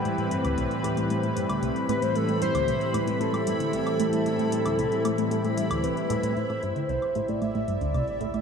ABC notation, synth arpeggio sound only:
X:1
M:4/4
L:1/16
Q:1/4=114
K:Am
V:1 name="Synth arpeggio sound" clef=bass
A,, A,, G,, D,, C,, z A,, A,, A,, A,, G,, D,, C,, z A,, A,, | A,, A,, G,, D,, C,, z A,, A,, A,, A,, G,, D,, C,, z A,, A,, | A,, A,, G,, D,, C,, z A,, A,, A,, A,, G,, D,, C,, z A,, A,, | A,, A,, G,, D,, C,, z A,, A,, A,, A,, G,, D,, C,, z A,, A,, |]